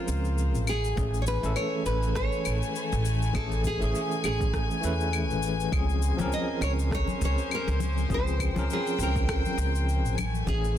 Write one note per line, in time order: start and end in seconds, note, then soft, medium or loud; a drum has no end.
0.00 0.69 F3 medium
0.00 0.64 G#3 medium
0.00 0.70 C4 medium
0.00 0.69 C#4 medium
0.00 0.64 F4 medium
0.00 0.71 F4 medium
0.00 0.70 G#4 medium
0.00 0.68 A#4 loud
0.00 0.64 C5 medium
0.08 0.54 C#2 medium
0.08 cabasa medium
0.25 cabasa soft
0.38 cabasa soft
0.54 0.93 A1 medium
0.54 cabasa soft
0.67 5.69 E3 medium
0.67 5.69 A3 medium
0.67 1.21 G#4 loud
0.67 8.07 G#5 medium
0.67 cabasa medium
0.67 claves medium
0.84 cabasa soft
0.96 1.38 A1 loud
0.96 1.39 E3 medium
0.96 1.39 A3 medium
0.96 1.40 C#4 medium
0.96 1.40 G#4 medium
0.96 kick loud
0.96 cabasa soft
1.14 cabasa soft
1.22 1.27 C#5 medium
1.27 1.56 B4 medium
1.27 cabasa medium
1.41 1.54 A1 medium
1.41 3.30 E3 medium
1.41 3.31 A3 medium
1.41 3.32 C#4 medium
1.41 cabasa soft
1.46 3.33 A4 loud
1.56 1.86 C#5 loud
1.56 cabasa soft
1.56 claves medium
1.86 2.27 A1 medium
1.86 2.16 B4 loud
1.86 cabasa medium
2.03 cabasa soft
2.15 3.31 C#5 loud
2.15 kick loud
2.15 cross-stick medium
2.15 cabasa soft
2.32 cabasa soft
2.45 2.59 A1 medium
2.45 cabasa medium
2.45 claves medium
2.62 cabasa soft
2.76 cabasa soft
2.92 3.30 A1 loud
2.92 cabasa soft
3.05 cabasa medium
3.22 cabasa soft
3.33 3.75 A1 loud
3.33 3.76 E3 medium
3.33 3.77 A3 medium
3.33 3.77 C#4 medium
3.33 3.78 G#4 medium
3.33 3.66 A4 medium
3.33 kick loud
3.33 cabasa soft
3.33 claves medium
3.52 cabasa soft
3.64 4.24 G#4 medium
3.64 kick medium
3.64 cabasa medium
3.79 3.92 A1 medium
3.79 4.80 E3 medium
3.79 4.80 A3 medium
3.79 4.81 C#4 medium
3.79 cabasa soft
3.84 4.82 G#4 loud
3.95 cabasa soft
4.11 cabasa soft
4.24 4.65 A1 medium
4.24 5.39 G#4 medium
4.24 cabasa medium
4.24 claves medium
4.41 kick loud
4.41 cabasa soft
4.53 kick loud
4.53 cross-stick medium
4.53 cabasa soft
4.71 cabasa soft
4.81 5.29 E2 medium
4.81 5.68 E3 loud
4.81 5.69 A3 medium
4.81 5.70 C#4 medium
4.81 cabasa medium
4.85 5.70 B4 loud
5.00 cabasa soft
5.13 cabasa soft
5.13 claves medium
5.29 5.68 A1 medium
5.29 cabasa soft
5.43 cabasa medium
5.60 cabasa soft
5.72 6.13 C#2 medium
5.72 6.15 F3 medium
5.72 10.14 F3 medium
5.72 6.15 C4 medium
5.72 6.15 C#4 medium
5.72 6.16 G#4 medium
5.72 10.14 C5 medium
5.72 kick loud
5.72 cabasa soft
5.72 claves medium
5.89 cabasa soft
6.02 cabasa medium
6.17 6.29 C#2 medium
6.17 8.06 F3 medium
6.17 8.07 C4 medium
6.17 8.07 C#4 medium
6.17 high conga medium
6.17 cabasa soft
6.21 8.08 A#4 loud
6.32 6.60 D#5 loud
6.32 cabasa soft
6.61 7.02 C#2 medium
6.61 6.71 C#5 medium
6.61 cabasa medium
6.61 claves medium
6.79 cabasa soft
6.91 7.21 C#5 loud
6.91 kick loud
6.91 cross-stick medium
6.91 cabasa soft
7.08 high conga medium
7.08 cabasa soft
7.21 7.34 C#2 medium
7.21 7.54 C#5 medium
7.21 cabasa medium
7.38 cabasa soft
7.51 8.08 A#4 medium
7.51 cabasa soft
7.51 claves medium
7.68 8.06 C#2 medium
7.68 cabasa soft
7.80 high conga medium
7.80 cabasa medium
7.98 cabasa soft
8.09 8.51 C#2 medium
8.09 8.52 F3 medium
8.09 8.52 C4 medium
8.09 8.53 C#4 medium
8.09 8.53 G#4 medium
8.09 10.16 G5 medium
8.09 kick loud
8.09 cabasa soft
8.14 8.73 C5 medium
8.27 cabasa soft
8.40 kick medium
8.40 cabasa medium
8.40 claves medium
8.54 8.66 C#2 medium
8.54 10.15 F3 medium
8.54 10.16 C4 medium
8.54 10.17 C#4 medium
8.54 high conga medium
8.54 cabasa soft
8.59 10.18 A#4 loud
8.70 8.99 G#4 medium
8.70 cabasa soft
8.87 cabasa soft
8.98 9.39 C#2 medium
8.98 cabasa medium
9.03 9.86 A#4 medium
9.16 kick loud
9.16 cabasa soft
9.29 kick loud
9.29 cross-stick medium
9.29 cabasa soft
9.29 claves medium
9.45 high conga medium
9.45 cabasa soft
9.58 10.04 C#2 medium
9.58 cabasa medium
9.75 cabasa soft
9.89 cabasa soft
10.04 10.43 A1 loud
10.04 cabasa soft
10.17 10.78 E3 medium
10.17 10.78 A3 medium
10.17 10.78 G#5 medium
10.17 high conga medium
10.17 cabasa medium
10.17 claves medium
10.35 cabasa soft
10.47 10.78 A1 loud
10.47 10.78 E3 medium
10.47 10.78 A3 medium
10.47 10.78 C#4 medium
10.47 10.76 G#4 medium
10.47 10.78 G#4 medium
10.47 kick loud
10.47 cabasa soft
10.64 cabasa soft